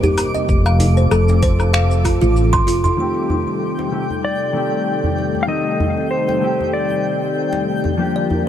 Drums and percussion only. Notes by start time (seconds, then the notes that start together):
0.03 djembe bass, shaker
0.18 open hi-hat, djembe slap, low woodblock, shaker
0.35 djembe tone, shaker
0.49 kick, shaker
0.66 low woodblock, shaker
0.80 open hi-hat, djembe tone, djembe bass, shaker
0.97 djembe tone, shaker
1.11 low woodblock, shaker
1.28 djembe slap, shaker
1.43 kick, open hi-hat, shaker
1.60 djembe tone, low woodblock, shaker
1.74 finger snap, shaker
1.91 djembe slap, shaker
2.05 kick, open hi-hat, low woodblock, shaker
2.22 shaker
2.36 shaker
2.53 kick, djembe slap, low woodblock, shaker
2.68 open hi-hat, shaker
2.85 djembe slap, djembe bass, shaker
3.30 djembe tone, djembe bass
3.47 djembe tone
3.79 djembe slap
4.10 djembe tone
5.04 djembe bass
5.18 djembe slap
5.35 djembe tone
5.80 djembe tone, djembe bass
5.97 djembe tone
6.29 djembe slap
6.61 djembe tone
6.91 djembe slap
7.53 djembe slap
7.84 djembe slap, djembe bass
8.30 djembe tone, djembe bass